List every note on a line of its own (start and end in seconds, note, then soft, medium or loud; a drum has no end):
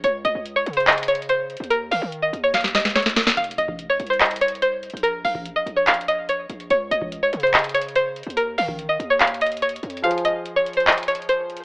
0.04 0.24 C#2 loud
0.04 0.22 C#5 medium
0.04 closed hi-hat medium
0.25 0.34 C#2 loud
0.25 0.54 D#5 medium
0.25 closed hi-hat medium
0.35 0.65 C#2 loud
0.46 closed hi-hat medium
0.56 0.74 C#5 medium
0.66 1.56 C#3 loud
0.66 closed hi-hat medium
0.73 0.86 C5 medium
0.73 closed hi-hat medium
0.80 closed hi-hat soft
0.87 1.06 D#5 medium
0.87 clap loud
0.87 closed hi-hat soft
0.92 closed hi-hat medium
0.98 closed hi-hat medium
1.03 closed hi-hat medium
1.08 1.26 C#5 medium
1.08 closed hi-hat medium
1.15 closed hi-hat medium
1.22 closed hi-hat soft
1.29 1.68 C5 medium
1.29 closed hi-hat medium
1.50 closed hi-hat soft
1.57 1.90 D#2 loud
1.57 closed hi-hat medium
1.64 closed hi-hat medium
1.70 1.89 A#4 medium
1.70 closed hi-hat medium
1.91 2.01 D#3 loud
1.91 2.21 F5 medium
1.91 open hi-hat medium
2.02 2.32 D#3 loud
2.12 closed hi-hat medium
2.22 2.41 D#5 medium
2.33 3.33 D#2 loud
2.33 closed hi-hat medium
2.44 2.53 C#5 medium
2.54 2.72 F5 medium
2.54 snare medium
2.54 closed hi-hat medium
2.61 snare medium
2.61 closed hi-hat medium
2.68 closed hi-hat medium
2.75 2.93 D#5 medium
2.75 snare medium
2.75 closed hi-hat medium
2.80 closed hi-hat medium
2.85 snare medium
2.85 closed hi-hat medium
2.90 closed hi-hat medium
2.96 3.35 C#5 medium
2.96 snare medium
2.96 closed hi-hat medium
3.02 snare medium
3.02 closed hi-hat medium
3.09 closed hi-hat medium
3.16 snare loud
3.16 closed hi-hat soft
3.23 snare medium
3.23 closed hi-hat medium
3.30 closed hi-hat medium
3.37 3.57 F1 loud
3.37 3.55 F5 medium
3.37 closed hi-hat medium
3.44 closed hi-hat medium
3.51 closed hi-hat medium
3.58 3.98 F1 loud
3.58 3.87 D#5 medium
3.58 closed hi-hat medium
3.68 kick loud
3.79 closed hi-hat medium
3.90 4.08 C#5 medium
4.00 4.90 C2 loud
4.00 closed hi-hat medium
4.07 4.19 C5 medium
4.07 closed hi-hat medium
4.14 closed hi-hat soft
4.20 4.39 D#5 medium
4.20 clap loud
4.20 closed hi-hat soft
4.26 closed hi-hat medium
4.31 closed hi-hat medium
4.36 closed hi-hat medium
4.41 4.60 C#5 medium
4.41 closed hi-hat medium
4.48 closed hi-hat medium
4.55 closed hi-hat soft
4.62 5.01 C5 medium
4.62 closed hi-hat medium
4.83 closed hi-hat soft
4.90 5.23 A#1 loud
4.90 closed hi-hat medium
4.97 closed hi-hat medium
5.03 5.22 A#4 medium
5.03 closed hi-hat medium
5.25 5.65 A#1 loud
5.25 5.54 F5 medium
5.25 open hi-hat medium
5.35 kick loud
5.46 closed hi-hat medium
5.56 5.74 D#5 medium
5.66 6.46 A#1 loud
5.66 closed hi-hat medium
5.76 5.86 C#5 medium
5.87 6.05 F5 medium
5.87 clap loud
5.87 closed hi-hat medium
5.94 closed hi-hat medium
6.01 closed hi-hat medium
6.08 6.26 D#5 medium
6.08 closed hi-hat medium
6.29 6.68 C#5 medium
6.29 closed hi-hat medium
6.50 6.70 A#1 loud
6.50 closed hi-hat medium
6.60 closed hi-hat soft
6.70 6.90 C#2 loud
6.70 6.89 C#5 medium
6.70 closed hi-hat medium
6.91 7.31 C#2 loud
6.91 7.21 D#5 medium
6.91 closed hi-hat medium
7.02 kick loud
7.12 closed hi-hat medium
7.23 7.41 C#5 medium
7.33 8.23 C#3 loud
7.33 closed hi-hat medium
7.40 7.52 C5 medium
7.40 closed hi-hat medium
7.47 closed hi-hat soft
7.54 7.72 D#5 medium
7.54 clap loud
7.54 closed hi-hat soft
7.59 closed hi-hat medium
7.64 closed hi-hat medium
7.69 closed hi-hat medium
7.74 7.93 C#5 medium
7.74 closed hi-hat medium
7.82 closed hi-hat medium
7.89 closed hi-hat soft
7.96 8.35 C5 medium
7.96 closed hi-hat medium
8.16 closed hi-hat soft
8.23 8.57 D#2 loud
8.23 closed hi-hat medium
8.30 closed hi-hat medium
8.37 8.55 A#4 medium
8.37 closed hi-hat medium
8.58 8.98 D#3 loud
8.58 8.87 F5 medium
8.58 open hi-hat medium
8.68 kick loud
8.79 closed hi-hat medium
8.89 9.07 D#5 medium
9.00 9.80 D#2 loud
9.00 closed hi-hat medium
9.10 9.19 C#5 medium
9.20 9.39 F5 medium
9.20 clap loud
9.20 closed hi-hat medium
9.27 closed hi-hat medium
9.34 closed hi-hat medium
9.41 9.60 D#5 medium
9.41 closed hi-hat medium
9.46 closed hi-hat medium
9.52 closed hi-hat medium
9.57 closed hi-hat medium
9.62 10.01 C#5 medium
9.62 closed hi-hat medium
9.69 closed hi-hat medium
9.76 closed hi-hat medium
9.83 10.03 F2 loud
9.83 closed hi-hat soft
9.90 closed hi-hat medium
9.97 closed hi-hat medium
10.02 11.64 F3 medium
10.02 11.64 F4 medium
10.02 11.64 G#4 medium
10.02 11.64 C5 medium
10.02 10.22 F5 medium
10.02 closed hi-hat medium
10.11 closed hi-hat medium
10.18 closed hi-hat medium
10.25 10.54 D#5 medium
10.25 closed hi-hat medium
10.46 closed hi-hat medium
10.56 10.74 C#5 medium
10.66 closed hi-hat medium
10.73 10.86 C5 medium
10.73 closed hi-hat medium
10.80 closed hi-hat soft
10.87 11.05 D#5 medium
10.87 clap loud
10.87 closed hi-hat soft
10.92 closed hi-hat medium
10.98 closed hi-hat medium
11.03 closed hi-hat medium
11.08 11.26 C#5 medium
11.08 closed hi-hat medium
11.15 closed hi-hat medium
11.22 closed hi-hat soft
11.29 11.64 C5 medium
11.29 closed hi-hat medium
11.50 closed hi-hat soft
11.57 closed hi-hat medium